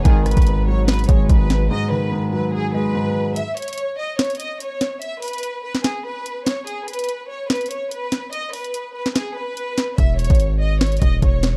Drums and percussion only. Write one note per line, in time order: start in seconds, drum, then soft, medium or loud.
0.05 kick loud
0.05 closed hi-hat medium
0.26 cross-stick medium
0.26 closed hi-hat medium
0.31 closed hi-hat medium
0.37 kick medium
0.37 closed hi-hat medium
0.42 closed hi-hat medium
0.47 closed hi-hat medium
0.88 snare loud
0.88 closed hi-hat soft
0.93 closed hi-hat soft
0.99 closed hi-hat medium
1.04 closed hi-hat medium
1.09 kick loud
1.09 closed hi-hat medium
1.29 kick loud
1.29 closed hi-hat medium
1.50 snare medium
1.50 closed hi-hat medium
3.36 closed hi-hat medium
3.57 closed hi-hat medium
3.62 closed hi-hat medium
3.68 closed hi-hat medium
3.73 closed hi-hat medium
3.78 closed hi-hat medium
4.19 snare loud
4.19 closed hi-hat soft
4.25 closed hi-hat soft
4.30 closed hi-hat soft
4.35 closed hi-hat soft
4.40 closed hi-hat medium
4.60 closed hi-hat medium
4.81 snare medium
4.81 closed hi-hat medium
5.02 closed hi-hat medium
5.22 closed hi-hat medium
5.22 open hi-hat medium
5.28 closed hi-hat medium
5.33 closed hi-hat medium
5.38 closed hi-hat medium
5.43 closed hi-hat medium
5.75 snare medium
5.84 snare loud
5.84 closed hi-hat medium
6.26 closed hi-hat medium
6.46 snare loud
6.46 closed hi-hat medium
6.67 closed hi-hat medium
6.88 closed hi-hat medium
6.93 closed hi-hat medium
6.99 closed hi-hat medium
7.04 closed hi-hat medium
7.09 closed hi-hat medium
7.50 snare loud
7.50 closed hi-hat soft
7.55 closed hi-hat soft
7.61 closed hi-hat soft
7.66 closed hi-hat soft
7.71 closed hi-hat loud
7.91 closed hi-hat medium
8.12 snare medium
8.12 closed hi-hat medium
8.33 closed hi-hat medium
8.53 closed hi-hat medium
8.53 open hi-hat medium
8.64 closed hi-hat soft
8.74 closed hi-hat medium
9.06 snare medium
9.15 snare loud
9.15 closed hi-hat medium
9.57 closed hi-hat medium
9.78 snare medium
9.78 closed hi-hat medium
9.98 kick loud
9.98 closed hi-hat medium
10.19 closed hi-hat medium
10.25 closed hi-hat medium
10.30 kick medium
10.30 closed hi-hat medium
10.35 closed hi-hat medium
10.40 closed hi-hat medium
10.81 snare loud
10.81 closed hi-hat soft
10.87 closed hi-hat soft
10.92 closed hi-hat soft
10.97 closed hi-hat soft
11.02 kick loud
11.02 closed hi-hat loud
11.22 kick medium
11.22 closed hi-hat medium
11.43 snare loud
11.43 closed hi-hat medium